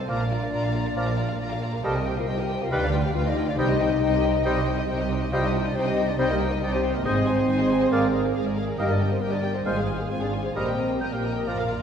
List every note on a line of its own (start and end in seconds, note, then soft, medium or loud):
0.08 0.47 A#1 medium
0.08 0.48 A#2 medium
0.08 0.24 F3 soft
0.08 1.59 D4 medium
0.08 0.19 F4 soft
0.08 0.24 A#4 medium
0.08 1.59 D5 medium
0.08 0.19 D5 soft
0.08 0.24 D5 soft
0.08 0.19 A#5 soft
0.20 0.31 A#4 soft
0.20 0.31 F5 soft
0.31 0.42 F4 soft
0.31 0.42 D5 soft
0.31 0.42 A#5 soft
0.42 0.53 A#4 soft
0.42 0.53 F5 soft
0.53 0.91 A#1 medium
0.53 0.92 A#2 medium
0.53 0.63 F4 soft
0.53 0.63 D5 soft
0.53 0.63 A#5 soft
0.64 0.75 A#4 soft
0.64 0.75 F5 soft
0.74 0.86 F4 soft
0.74 0.86 D5 soft
0.74 0.86 A#5 soft
0.85 0.97 A#4 soft
0.85 0.96 F5 soft
0.85 0.97 F5 soft
0.96 1.35 A#1 medium
0.96 1.35 A#2 medium
0.96 1.12 F3 medium
0.96 1.07 F4 soft
0.96 1.12 A#4 medium
0.96 1.07 D5 soft
0.96 1.12 D5 soft
0.96 1.07 A#5 soft
1.07 1.19 A#4 soft
1.07 1.18 F5 soft
1.18 1.30 F4 soft
1.18 1.29 D5 soft
1.18 1.29 A#5 soft
1.30 1.41 A#4 soft
1.30 1.41 F5 soft
1.40 1.79 A#1 medium
1.40 1.79 A#2 medium
1.40 1.51 F4 soft
1.40 1.50 D5 soft
1.40 1.50 A#5 soft
1.51 1.63 A#4 soft
1.51 1.62 F5 soft
1.62 1.73 F4 soft
1.62 1.73 D5 soft
1.62 1.73 A#5 soft
1.74 1.84 A#4 soft
1.74 1.84 F5 soft
1.84 2.23 C2 medium
1.84 2.23 C3 medium
1.84 1.99 G3 medium
1.84 1.94 G4 medium
1.84 1.95 A4 medium
1.84 2.00 A#4 medium
1.84 1.95 C5 soft
1.84 2.00 D#5 medium
1.84 1.94 G5 soft
1.84 1.97 A5 medium
1.95 2.18 G4 medium
1.95 2.06 A#4 medium
1.95 2.06 A#4 soft
1.95 2.06 D#5 soft
1.95 2.18 G5 medium
2.06 2.17 G4 soft
2.06 2.17 C5 soft
2.06 2.17 G5 soft
2.16 2.23 F4 medium
2.16 2.28 A#4 soft
2.16 2.28 D#5 soft
2.16 2.29 F5 medium
2.28 2.67 C2 medium
2.28 2.67 C3 medium
2.28 2.39 D#4 medium
2.28 2.38 G4 soft
2.28 2.39 C5 medium
2.28 2.38 D#5 medium
2.28 2.38 G5 medium
2.39 2.61 G4 medium
2.39 2.50 A#4 medium
2.39 2.50 A#4 soft
2.39 2.50 D#5 soft
2.39 2.45 G5 medium
2.50 2.61 G4 soft
2.50 2.61 C5 medium
2.50 2.61 G5 medium
2.60 2.72 F4 medium
2.60 2.72 A#4 medium
2.60 2.72 A#4 soft
2.60 2.72 D#5 soft
2.60 2.73 F5 medium
2.71 3.10 D2 medium
2.71 3.10 D3 medium
2.71 2.87 G3 medium
2.71 2.83 D#4 medium
2.71 2.82 F4 medium
2.71 2.82 B4 medium
2.71 2.87 B4 medium
2.71 2.82 D#5 medium
2.71 2.87 F5 medium
2.71 2.82 G5 medium
2.82 3.05 D4 medium
2.82 2.94 G4 soft
2.82 2.88 D5 medium
2.82 2.94 D5 medium
2.82 2.93 F5 soft
2.94 3.05 F4 medium
2.94 3.04 B4 medium
2.94 3.04 G5 soft
3.03 3.15 G4 medium
3.03 3.16 D5 soft
3.03 3.15 F5 medium
3.03 3.14 G5 medium
3.14 3.53 D2 medium
3.14 3.54 D3 medium
3.14 3.20 F4 medium
3.14 3.25 F4 medium
3.14 3.26 B4 medium
3.14 3.24 F5 medium
3.14 3.25 G5 soft
3.25 3.48 D#4 medium
3.25 3.37 G4 soft
3.25 3.38 D5 soft
3.25 3.47 D#5 medium
3.25 3.37 F5 soft
3.37 3.48 F4 soft
3.37 3.48 B4 medium
3.37 3.48 G5 soft
3.47 3.59 D4 medium
3.47 3.58 G4 medium
3.47 3.58 D5 medium
3.47 3.59 D5 medium
3.47 3.59 F5 soft
3.58 3.97 C2 medium
3.58 3.97 C3 medium
3.58 3.74 G3 medium
3.58 5.11 D#4 medium
3.58 3.69 D#4 medium
3.58 3.74 C5 medium
3.58 3.69 C5 medium
3.58 5.08 D#5 medium
3.58 3.74 D#5 medium
3.58 3.69 G5 medium
3.69 3.80 G4 medium
3.69 3.81 D#5 medium
3.80 3.91 D#4 medium
3.80 3.92 C5 medium
3.80 3.92 G5 medium
3.91 4.02 G4 soft
3.91 4.02 D#5 medium
3.91 4.03 D#5 medium
4.02 4.40 C2 medium
4.02 4.41 C3 medium
4.02 4.12 D#4 soft
4.02 4.13 C5 medium
4.02 4.12 G5 medium
4.13 4.24 G4 medium
4.13 4.24 D#5 medium
4.23 4.35 D#4 medium
4.23 4.35 C5 medium
4.23 4.34 G5 medium
4.33 4.46 G4 medium
4.33 4.45 D#5 medium
4.33 4.46 D#5 medium
4.44 4.84 C2 medium
4.44 4.84 C3 medium
4.44 4.61 G3 medium
4.44 4.56 D#4 medium
4.44 4.61 C5 medium
4.44 4.56 C5 medium
4.44 4.61 D#5 medium
4.44 4.55 G5 medium
4.56 4.67 G4 medium
4.56 4.67 D#5 medium
4.56 4.68 D#5 medium
4.66 4.78 D#4 medium
4.66 4.78 C5 medium
4.66 4.78 G5 medium
4.78 4.89 G4 soft
4.78 4.89 D#5 medium
4.78 4.89 D#5 soft
4.88 5.28 C2 medium
4.88 5.28 C3 medium
4.88 4.99 D#4 medium
4.88 5.00 C5 medium
4.88 4.99 G5 medium
4.99 5.11 G4 medium
4.99 5.11 D#5 soft
4.99 5.11 D#5 medium
5.11 5.22 D#4 medium
5.11 5.22 C5 medium
5.11 5.22 G5 soft
5.21 5.33 G4 medium
5.21 5.32 D#5 medium
5.21 5.33 D#5 medium
5.32 5.71 C2 medium
5.32 5.71 C3 medium
5.32 5.48 G3 medium
5.32 5.43 D#4 medium
5.32 5.42 F4 loud
5.32 5.48 C5 medium
5.32 5.43 C5 medium
5.32 5.48 D#5 medium
5.32 5.38 F5 medium
5.32 5.42 G5 medium
5.43 5.65 D#4 medium
5.43 5.54 G4 medium
5.43 5.50 D#5 medium
5.43 5.54 D#5 medium
5.43 5.55 D#5 medium
5.55 5.65 D#4 medium
5.55 5.65 C5 medium
5.55 5.65 G5 soft
5.65 5.70 D4 medium
5.65 5.76 G4 soft
5.65 5.77 D5 medium
5.65 5.76 D#5 medium
5.75 6.14 C2 medium
5.75 6.14 C3 medium
5.75 5.86 C4 medium
5.75 5.86 D#4 medium
5.75 5.86 C5 medium
5.75 5.86 G5 medium
5.86 6.08 D#4 medium
5.86 5.98 G4 medium
5.86 5.97 D#5 medium
5.86 6.10 D#5 medium
5.86 5.98 D#5 medium
5.97 6.08 D#4 medium
5.97 6.08 C5 medium
5.97 6.08 G5 medium
6.08 6.19 D4 medium
6.08 6.19 G4 medium
6.08 6.18 D5 medium
6.08 6.19 D#5 medium
6.18 6.57 C2 medium
6.18 6.57 C3 medium
6.18 6.34 G3 medium
6.18 6.29 C4 loud
6.18 6.29 D#4 medium
6.18 6.29 C5 medium
6.18 6.34 C5 medium
6.18 6.24 C5 medium
6.18 6.34 D#5 medium
6.18 6.29 G5 medium
6.29 6.51 A#3 medium
6.29 6.41 G4 medium
6.29 6.53 A#4 medium
6.29 6.40 D#5 medium
6.29 6.41 D#5 medium
6.40 6.52 D#4 medium
6.40 6.51 C5 medium
6.40 6.51 G5 soft
6.50 6.62 D#4 medium
6.50 6.63 G4 medium
6.50 6.62 D#5 medium
6.50 6.62 D#5 soft
6.62 7.00 C2 medium
6.62 7.00 C3 medium
6.62 6.73 D4 medium
6.62 6.72 D#4 medium
6.62 6.72 C5 soft
6.62 6.74 D5 medium
6.62 6.73 G5 medium
6.73 6.94 C4 medium
6.73 6.84 G4 soft
6.73 6.96 C5 medium
6.73 6.84 D#5 soft
6.84 6.95 D#4 medium
6.84 6.95 C5 medium
6.84 6.95 G5 medium
6.94 7.05 A#3 medium
6.94 7.06 G4 soft
6.94 7.07 A#4 medium
6.94 7.05 D#5 medium
6.94 7.05 D#5 soft
7.05 7.43 G#1 medium
7.05 7.43 G#2 medium
7.05 7.20 G#3 medium
7.05 8.57 C4 medium
7.05 7.15 D#4 medium
7.05 8.57 C5 medium
7.05 7.20 C5 medium
7.05 7.16 C5 medium
7.05 7.20 D#5 medium
7.05 7.15 G#5 medium
7.16 7.27 G#4 soft
7.16 7.27 D#5 medium
7.26 7.37 D#4 medium
7.26 7.38 C5 medium
7.26 7.38 G#5 medium
7.38 7.48 G#4 medium
7.38 7.48 D#5 medium
7.38 7.49 D#5 medium
7.48 7.87 G#1 medium
7.48 7.86 G#2 medium
7.48 7.58 D#4 soft
7.48 7.58 C5 medium
7.48 7.58 G#5 medium
7.59 7.70 G#4 medium
7.59 7.70 D#5 medium
7.70 7.81 D#4 soft
7.70 7.81 C5 medium
7.70 7.81 G#5 soft
7.81 7.91 G#4 medium
7.81 7.92 D#5 soft
7.81 7.92 D#5 medium
7.91 8.30 G#1 medium
7.91 8.30 G#2 medium
7.91 8.07 A#3 medium
7.91 8.02 G#4 medium
7.91 8.07 A#4 medium
7.91 8.02 A#4 medium
7.91 8.07 D5 medium
7.91 8.01 F5 medium
8.03 8.14 G#4 soft
8.03 8.14 A#4 soft
8.03 8.14 D5 medium
8.13 8.25 G#4 soft
8.13 8.24 A#4 medium
8.13 8.25 F5 soft
8.23 8.36 G#4 soft
8.23 8.35 A#4 soft
8.23 8.35 D5 soft
8.34 8.74 G#1 medium
8.34 8.74 G#2 medium
8.34 8.45 G#4 medium
8.34 8.46 A#4 soft
8.34 8.45 F5 soft
8.46 8.57 G#4 soft
8.46 8.57 A#4 soft
8.46 8.57 D5 soft
8.57 8.68 G#4 soft
8.57 8.68 A#4 medium
8.57 8.68 F5 soft
8.67 8.79 G#4 medium
8.67 8.79 A#4 soft
8.67 8.78 D5 soft
8.77 9.17 G1 medium
8.77 9.17 G2 medium
8.77 8.94 A#3 medium
8.77 8.83 D#4 medium
8.77 8.89 G4 medium
8.77 8.89 A#4 medium
8.77 8.94 A#4 medium
8.77 8.89 D#5 medium
8.77 8.94 D#5 medium
8.77 8.88 G5 soft
8.89 9.11 D4 medium
8.89 9.01 G4 soft
8.89 9.00 A#4 medium
8.89 8.96 D5 medium
8.89 9.00 D#5 soft
9.00 9.11 G4 soft
9.00 9.11 A#4 soft
9.00 9.11 G5 soft
9.10 9.22 C4 medium
9.10 9.22 G4 soft
9.10 9.22 A#4 soft
9.10 9.23 C5 medium
9.10 9.22 D#5 soft
9.21 9.61 G1 medium
9.21 9.61 G2 medium
9.21 9.33 A#3 medium
9.21 9.32 G4 soft
9.21 9.33 A#4 medium
9.21 9.32 A#4 medium
9.21 9.32 G5 medium
9.32 9.42 D4 medium
9.32 9.44 G4 soft
9.32 9.44 A#4 soft
9.32 9.56 D5 medium
9.32 9.44 D#5 medium
9.43 9.54 G4 soft
9.43 9.55 A#4 soft
9.43 9.54 G5 soft
9.54 9.59 C4 medium
9.54 9.66 G4 soft
9.54 9.66 A#4 soft
9.54 9.65 C5 soft
9.54 9.65 D#5 soft
9.65 10.05 G#1 medium
9.65 10.05 G#2 medium
9.65 9.81 G#3 medium
9.65 9.70 A#3 medium
9.65 9.76 F4 soft
9.65 9.70 A#4 medium
9.65 9.76 C5 soft
9.65 9.82 C5 medium
9.65 9.81 F5 medium
9.65 9.76 G#5 soft
9.76 9.87 G#3 medium
9.76 9.88 G#4 soft
9.76 9.82 G#4 medium
9.76 9.88 G#4 soft
9.76 9.88 F5 soft
9.88 9.99 F4 soft
9.88 10.00 C5 soft
9.88 9.99 G#5 soft
9.99 10.10 A#3 medium
9.99 10.10 G#4 soft
9.99 10.11 G#4 soft
9.99 10.04 A#4 soft
9.99 10.10 F5 soft
10.10 10.50 G#1 medium
10.10 10.50 G#2 medium
10.10 10.21 C4 medium
10.10 10.21 F4 soft
10.10 10.16 C5 medium
10.10 10.21 C5 soft
10.10 10.21 G#5 soft
10.21 10.45 D4 medium
10.21 10.33 G#4 soft
10.21 10.27 D5 medium
10.21 10.33 F5 soft
10.33 10.44 F4 soft
10.33 10.44 C5 soft
10.33 10.44 G#5 soft
10.43 10.50 C4 medium
10.43 10.55 G#4 soft
10.43 10.56 G#4 soft
10.43 10.48 C5 medium
10.43 10.55 F5 soft
10.55 10.96 A#1 medium
10.55 10.96 A#2 medium
10.55 10.72 G3 medium
10.55 11.00 C4 medium
10.55 10.66 A#4 soft
10.55 10.71 A#4 medium
10.55 11.02 C5 medium
10.55 10.66 D#5 soft
10.55 10.72 D#5 soft
10.55 10.66 A#5 soft
10.66 10.78 G4 soft
10.66 10.79 A#4 soft
10.66 10.78 G5 soft
10.78 10.90 A#4 soft
10.78 10.90 D#5 soft
10.78 10.90 A#5 soft
10.90 11.01 G4 soft
10.90 11.01 A#4 soft
10.90 11.01 G5 soft
11.00 11.42 A#1 medium
11.00 11.42 A#2 medium
11.00 11.82 A#3 medium
11.00 11.82 A#4 medium
11.00 11.12 A#4 soft
11.00 11.12 D#5 soft
11.00 11.06 G5 medium
11.00 11.12 A#5 soft
11.13 11.24 G4 soft
11.13 11.24 A#4 soft
11.13 11.23 F5 soft
11.13 11.24 G5 soft
11.24 11.36 A#4 soft
11.24 11.35 D#5 soft
11.24 11.36 A#5 soft
11.36 11.47 G4 soft
11.36 11.47 A#4 soft
11.36 11.49 D#5 soft
11.36 11.47 G5 soft
11.47 11.82 A#1 medium
11.47 11.54 A#2 soft
11.47 11.82 A#2 medium
11.47 11.63 F3 soft
11.47 11.57 F4 soft
11.47 11.63 A#4 medium
11.47 11.58 D5 medium
11.47 11.58 D5 soft
11.47 11.57 A#5 soft
11.55 11.61 A#2 soft
11.55 11.69 A#4 soft
11.55 11.70 F5 soft
11.60 11.69 A#2 soft
11.60 11.70 F5 medium
11.69 11.76 A#2 soft
11.69 11.80 F4 soft
11.69 11.81 D5 soft
11.69 11.81 A#5 soft
11.77 11.82 A#2 soft